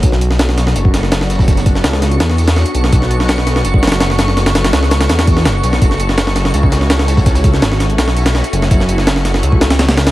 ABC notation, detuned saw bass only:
X:1
M:4/4
L:1/8
Q:1/4=166
K:Bm
V:1 name="Detuned saw bass" clef=bass
B,,,4 F,,,4- | F,,,2 C,,2 E,,2 z B,,, | B,,,4 F,,,4- | F,,,2 C,,2 E,,2 F,,, B,,, |
F,,,4 C,,4- | C,,2 ^G,,,2 B,,,2 z F,,, | F,,,4 C,,4 |]